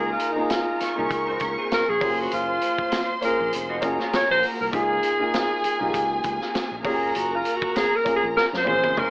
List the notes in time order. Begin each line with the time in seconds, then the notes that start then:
Already playing: C#2 A#3 D#4 F4 G#4 A#4 A#5
0.12 F4
0.19 closed hi-hat
0.32 A#3 D#4
0.36 D#4 F4 G#4
0.50 F4, snare, closed hi-hat
0.80 A#4 C#6, muted fingered electric bass stroke, snare, closed hi-hat
0.95 C2 A#3 C#4 D#4 F4 G#4 A#4
1.11 C#2, kick, closed hi-hat
1.27 D#4 C5
1.40 C#2 C#4 A#4, kick, closed hi-hat
1.58 C4 G#4
1.72 A#4, snare, closed hi-hat
1.89 A#1 G#4
2.00 F#1 A#3 C#4 F4 G4 C5 C6, kick, open hi-hat
2.10 G#4
2.20 F#4
2.31 F#1 F4, closed hi-hat
2.61 closed hi-hat
2.79 kick
2.92 snare, closed hi-hat
3.21 A#3 C#4 F4 G#4 A#4, muted fingered electric bass stroke, closed hi-hat
3.40 A#1
3.53 F1, closed hi-hat
3.69 F#4 D#5
3.81 F#1 A#3 C#4 F4 G#4 A#4 A#5, kick, closed hi-hat
3.99 F4 C#5, snare
4.13 C#4 A#4 C#5, muted fingered electric bass stroke, snare, closed hi-hat
4.28 A#1 A#3 F#4 C5
4.43 open hi-hat
4.60 C2 A#4
4.71 C#2 A#3 D#4 F4 G#4 G#5, kick, closed hi-hat
5.03 closed hi-hat
5.19 A#3 D#4 F4 G#4
5.34 snare, closed hi-hat
5.64 G#4, muted fingered electric bass stroke, closed hi-hat
5.79 C2 A#3 D#4 F4 G4
5.89 G#4
5.94 C#2, kick, closed hi-hat
6.24 C#2, kick, closed hi-hat
6.41 snare
6.55 snare, closed hi-hat
6.71 A#1
6.84 F#1 A#3 C#4 F4 G4 G#4 A#4 A#5, kick, open hi-hat
6.94 G#4
7.15 F#1 F#4, closed hi-hat
7.35 F4
7.45 closed hi-hat
7.56 F#4
7.62 kick
7.76 G#4, snare, closed hi-hat
7.96 A#4
8.04 A#3 C#4 F4 G#4, muted fingered electric bass stroke, kick, closed hi-hat
8.16 G#4
8.24 A#1
8.37 A#4, snare
8.53 F#2, snare
8.57 C5
8.64 A#1 A#3 C#4 F4 G#4 C5 C6, high tom
8.83 F#1, high tom
8.97 F#1 F4 A#4 C#5, mid tom